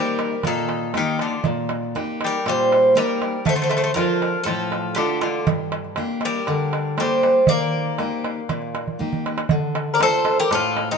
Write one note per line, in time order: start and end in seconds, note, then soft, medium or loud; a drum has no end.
0.00 0.42 G3 medium
0.00 0.34 A#3 soft
0.00 0.35 D#4 soft
0.00 0.35 G4 soft
0.00 0.47 A#4 medium
0.19 darbuka tek medium
0.32 darbuka tek soft
0.43 0.93 A#2 medium
0.43 0.92 D#3 medium
0.43 0.97 A4 medium
0.43 darbuka tek medium
0.43 darbuka dum medium
0.57 darbuka tek soft
0.69 darbuka tek medium
0.81 darbuka tek soft
0.94 1.19 D#3 medium
0.94 1.34 A#3 soft
0.94 1.34 D#4 soft
0.94 1.35 G4 soft
0.94 1.19 G4 medium
0.94 darbuka tek medium
1.19 1.44 D3 medium
1.19 1.44 F4 medium
1.19 darbuka tek medium
1.32 darbuka tek soft
1.44 1.93 A#2 medium
1.44 darbuka dum medium
1.69 darbuka tek medium
1.83 darbuka tek soft
1.95 2.35 A#3 soft
1.95 2.36 D#4 soft
1.95 2.36 G4 soft
1.95 darbuka tek medium
2.21 2.46 G3 medium
2.21 darbuka tek medium
2.26 2.47 A#4 medium
2.46 2.94 A#2 medium
2.46 2.93 G3 medium
2.46 2.96 C5 loud
2.46 darbuka tek medium
2.59 darbuka tek soft
2.72 darbuka tek medium
2.95 3.44 G3 medium
2.95 3.36 A#3 soft
2.95 3.36 D#4 soft
2.95 3.36 G4 soft
2.95 3.43 A#4 medium
2.95 darbuka tek medium
3.22 darbuka tek medium
3.45 3.94 D3 medium
3.45 3.53 A3 medium
3.45 3.55 C5 medium
3.45 darbuka dum medium
3.55 3.61 A3 medium
3.55 3.62 C5 medium
3.62 3.68 A3 medium
3.62 3.69 C5 medium
3.69 3.76 A3 medium
3.69 3.77 C5 medium
3.69 darbuka tek medium
3.77 3.82 A3 medium
3.77 3.83 C5 medium
3.83 3.90 A3 medium
3.83 3.91 C5 medium
3.83 darbuka tek soft
3.94 4.36 F3 soft
3.94 4.44 F3 medium
3.94 4.36 D4 soft
3.94 4.37 F4 soft
3.94 4.42 A#4 medium
3.94 darbuka tek medium
4.22 darbuka tek medium
4.44 4.95 A2 medium
4.44 4.94 F3 medium
4.44 4.92 A4 medium
4.44 darbuka tek medium
4.72 darbuka tek medium
4.95 5.21 D3 medium
4.95 5.37 A3 soft
4.95 5.38 D4 soft
4.95 5.38 F4 soft
4.95 5.19 G4 medium
4.95 darbuka tek medium
5.21 5.46 D3 medium
5.21 5.45 F4 medium
5.21 darbuka tek medium
5.47 5.96 G2 medium
5.47 darbuka dum loud
5.72 darbuka tek medium
5.85 darbuka tek soft
5.96 6.38 A#3 medium
5.96 6.38 D4 soft
5.96 6.38 G4 medium
5.96 darbuka tek medium
6.21 darbuka tek medium
6.25 6.96 G3 medium
6.25 6.96 A#4 medium
6.47 6.97 D3 medium
6.47 darbuka tek medium
6.60 darbuka tek soft
6.73 darbuka tek medium
6.97 7.47 G3 medium
6.97 7.38 A#3 soft
6.97 7.38 D4 soft
6.97 7.39 G4 soft
6.97 7.46 C5 medium
6.97 darbuka tek medium
7.23 darbuka tek medium
7.47 7.98 D#3 medium
7.47 8.97 A#3 medium
7.47 8.96 D5 medium
7.47 darbuka dum medium
7.61 darbuka tek soft
7.85 darbuka tek soft
7.98 8.39 A#3 soft
7.98 8.40 D#4 soft
7.98 8.40 G4 soft
7.98 darbuka tek medium
8.12 darbuka tek soft
8.24 darbuka tek medium
8.49 8.99 A#2 medium
8.49 darbuka tek medium
8.49 darbuka dum medium
8.62 darbuka tek soft
8.75 darbuka tek medium
8.88 darbuka dum medium
8.99 9.40 A#3 soft
8.99 9.40 D#4 soft
8.99 9.41 G4 soft
8.99 darbuka dum medium
9.13 darbuka dum medium
9.26 darbuka tek medium
9.38 darbuka tek medium
9.49 10.00 D3 medium
9.49 darbuka dum loud
9.75 darbuka tek medium
9.94 10.00 A#4 medium
9.94 10.01 D5 medium
9.99 10.40 A3 medium
9.99 10.41 D4 soft
9.99 10.41 F4 medium
9.99 10.37 A4 medium
9.99 10.39 C5 loud
9.99 darbuka tek medium
10.13 darbuka tek soft
10.25 darbuka tek medium
10.38 10.51 G4 medium
10.38 10.51 A#4 loud
10.38 darbuka tek soft
10.51 10.98 A2 medium
10.51 10.88 F4 medium
10.51 10.87 A4 loud
10.51 darbuka tek medium
10.64 darbuka tek soft
10.77 darbuka tek medium
10.91 10.98 D#4 medium
10.91 10.98 G4 medium